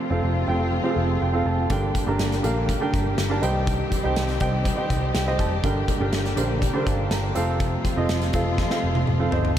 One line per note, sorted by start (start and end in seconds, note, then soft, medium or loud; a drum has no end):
0.00 0.19 C3 medium
0.00 1.68 C3 medium
0.00 1.68 F3 medium
0.00 1.68 A3 medium
0.00 0.10 C4 medium
0.00 0.10 F4 medium
0.00 1.68 F4 medium
0.00 0.11 A4 medium
0.00 0.11 F5 medium
0.10 0.21 F1 medium
0.10 0.43 C4 medium
0.10 0.43 F4 medium
0.10 0.43 A4 medium
0.10 0.43 F5 medium
0.23 0.43 F1 medium
0.48 0.78 F1 medium
0.48 0.80 C4 medium
0.48 0.80 F4 medium
0.48 0.80 A4 medium
0.48 0.80 G5 medium
0.84 1.27 C4 medium
0.84 1.27 F4 medium
0.84 0.90 G#4 soft
0.84 0.95 F5 medium
0.90 1.30 A4 medium
0.96 1.17 F1 medium
0.96 1.20 F5 medium
1.21 1.42 F1 medium
1.21 1.45 G5 medium
1.33 1.65 C4 medium
1.33 1.66 F4 medium
1.33 1.66 A4 medium
1.33 1.66 F5 medium
1.45 1.66 F1 medium
1.45 1.69 A5 medium
1.70 1.90 G1 medium
1.70 2.40 G2 medium
1.70 3.41 D3 medium
1.70 2.40 D3 medium
1.70 7.32 G3 medium
1.70 3.41 A#3 medium
1.70 2.02 D4 medium
1.70 7.32 G4 medium
1.70 2.03 G4 medium
1.70 2.03 A#4 medium
1.70 2.03 G5 medium
1.70 kick medium
1.70 closed hi-hat medium
1.95 kick medium
1.95 closed hi-hat medium
2.07 2.17 G1 medium
2.07 2.39 D4 medium
2.07 2.40 G4 medium
2.07 2.40 A#4 medium
2.07 2.40 A#5 medium
2.19 2.39 G1 medium
2.19 snare medium
2.19 closed hi-hat medium
2.32 snare soft
2.32 closed hi-hat soft
2.43 2.74 A#1 medium
2.43 2.76 D4 medium
2.43 2.76 G4 medium
2.43 2.76 A#4 medium
2.43 2.77 F5 medium
2.43 closed hi-hat medium
2.69 kick medium
2.69 closed hi-hat medium
2.81 3.24 D4 medium
2.81 3.24 G4 medium
2.81 3.24 A#4 medium
2.81 3.24 G5 medium
2.94 3.14 G1 medium
2.94 kick medium
2.94 closed hi-hat medium
3.18 3.38 G1 medium
3.18 snare medium
3.18 closed hi-hat medium
3.30 3.42 D4 medium
3.30 3.41 G4 medium
3.30 3.43 A#4 medium
3.30 3.43 A5 medium
3.42 3.83 C2 medium
3.42 4.12 G2 medium
3.42 5.62 D#3 medium
3.42 5.62 C4 medium
3.42 3.95 D#4 medium
3.42 3.96 G4 medium
3.42 3.96 C5 medium
3.42 3.96 G5 medium
3.42 closed hi-hat medium
3.67 kick medium
3.67 closed hi-hat medium
3.92 kick medium
3.92 closed hi-hat medium
4.03 4.14 C2 medium
4.03 4.36 D#4 medium
4.03 4.36 G4 medium
4.03 4.36 C5 medium
4.03 4.36 G5 medium
4.16 4.37 C2 medium
4.16 snare medium
4.16 closed hi-hat medium
4.29 snare soft
4.29 closed hi-hat soft
4.40 4.71 C2 medium
4.40 4.73 D#4 medium
4.40 4.73 G4 medium
4.40 4.73 C5 medium
4.40 4.73 G5 medium
4.40 kick medium
4.40 closed hi-hat medium
4.65 kick medium
4.65 closed hi-hat medium
4.77 5.20 D#4 medium
4.77 5.20 G4 medium
4.77 5.20 C5 medium
4.77 5.14 G5 medium
4.90 5.10 C2 medium
4.90 5.13 D#5 medium
4.90 kick medium
4.90 closed hi-hat medium
5.15 5.35 C2 medium
5.15 5.38 G5 medium
5.15 snare medium
5.15 closed hi-hat medium
5.26 5.59 D#4 medium
5.26 5.59 G4 medium
5.26 5.59 C5 medium
5.26 5.59 D#5 medium
5.39 5.59 F1 medium
5.39 5.62 A5 medium
5.39 kick medium
5.39 closed hi-hat medium
5.64 5.84 G1 medium
5.64 6.34 G2 medium
5.64 7.34 D3 medium
5.64 6.34 D3 medium
5.64 7.34 A#3 medium
5.64 5.96 D4 medium
5.64 5.96 G4 medium
5.64 5.96 A#4 medium
5.64 5.96 G5 medium
5.64 kick medium
5.64 closed hi-hat medium
5.88 kick medium
5.88 closed hi-hat medium
6.00 6.11 G1 medium
6.00 6.32 D4 medium
6.00 6.33 G4 medium
6.00 6.33 A#4 medium
6.00 6.33 G5 medium
6.12 6.33 G1 medium
6.12 snare medium
6.12 closed hi-hat medium
6.26 snare soft
6.26 closed hi-hat soft
6.37 6.67 A#1 medium
6.37 6.69 D4 medium
6.37 6.69 G4 medium
6.37 6.69 A#4 medium
6.37 6.70 C5 medium
6.37 closed hi-hat medium
6.62 kick medium
6.62 closed hi-hat medium
6.74 7.17 D4 medium
6.74 7.17 G4 medium
6.74 6.81 A4 soft
6.74 7.18 C5 medium
6.81 7.20 A#4 medium
6.87 7.07 G1 medium
6.87 7.10 F5 soft
6.87 7.10 A5 medium
6.87 kick medium
6.87 closed hi-hat medium
7.11 7.31 G1 medium
7.11 7.58 G5 soft
7.11 7.58 A#5 medium
7.11 snare medium
7.11 closed hi-hat medium
7.35 7.76 F1 medium
7.35 9.54 C3 medium
7.35 8.05 C3 medium
7.35 9.54 F3 medium
7.35 9.54 A3 medium
7.35 7.89 C4 medium
7.35 9.54 F4 medium
7.35 7.89 F4 medium
7.35 7.89 A4 medium
7.35 7.89 F5 medium
7.35 closed hi-hat medium
7.60 kick loud
7.60 closed hi-hat medium
7.85 kick medium
7.85 closed hi-hat medium
7.96 8.07 F1 medium
7.96 8.29 C4 medium
7.96 8.29 F4 medium
7.96 8.29 A4 medium
7.96 8.29 D#5 medium
8.09 8.30 F1 medium
8.09 snare loud
8.09 closed hi-hat medium
8.22 snare soft
8.22 closed hi-hat soft
8.33 8.64 F1 medium
8.33 8.66 C4 medium
8.33 8.66 F4 medium
8.33 8.66 A4 medium
8.33 8.66 F5 medium
8.33 kick medium
8.33 closed hi-hat medium
8.58 kick medium
8.58 snare soft
8.70 9.13 C4 medium
8.70 9.13 F4 medium
8.70 9.14 A4 medium
8.70 9.14 F5 medium
8.70 snare soft
8.84 9.04 F1 medium
8.95 high tom medium
9.07 9.28 F1 medium
9.07 mid tom medium
9.19 9.52 C4 medium
9.19 9.52 F4 medium
9.19 9.52 A4 medium
9.19 9.52 F5 medium
9.31 9.53 G1 medium
9.31 9.59 D#4 medium
9.31 9.59 C5 medium
9.31 floor tom medium
9.45 floor tom medium